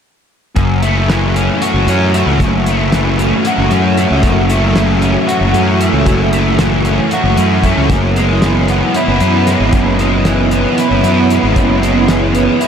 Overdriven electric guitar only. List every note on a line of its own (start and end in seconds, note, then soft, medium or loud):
0.56 2.39 F#2 medium
0.82 2.14 A3 medium
1.08 2.43 E3 medium
1.36 1.89 C#4 medium
1.62 2.97 F#4 medium
1.89 3.20 C#4 medium
2.14 2.67 A3 medium
2.40 4.23 F#2 medium
2.67 3.97 A3 medium
2.94 4.27 E3 medium
3.20 3.71 C#4 medium
3.47 4.79 F#4 medium
3.72 5.01 C#4 medium
3.97 4.49 A3 medium
4.24 5.54 F#2 medium
4.50 5.79 A3 medium
4.76 6.11 E3 medium
5.01 5.54 C#4 medium
5.28 6.59 F#4 medium
5.54 6.86 C#4 medium
5.80 6.32 A3 medium
6.08 7.38 F#2 medium
6.33 7.63 A3 medium
6.59 7.94 E3 medium
6.86 7.37 C#4 medium
7.13 7.90 F#4 medium
7.38 8.70 C#4 medium
7.64 7.90 A3 medium
7.91 9.21 F#2 medium
8.17 9.47 G#3 medium
8.44 9.77 E3 medium
8.70 9.21 B3 medium
8.96 10.78 E4 medium
9.21 10.52 B3 medium
9.47 10.00 G#3 medium
9.74 11.04 F#2 medium
10.01 11.32 G#3 medium
10.26 11.59 E3 medium
10.53 11.05 B3 medium
10.79 12.60 E4 medium
11.06 12.34 B3 medium
11.32 11.81 G#3 medium
11.56 12.68 F#2 medium
11.82 12.68 G#3 medium
12.09 12.68 E3 medium
12.35 12.68 B3 medium
12.60 12.68 E4 medium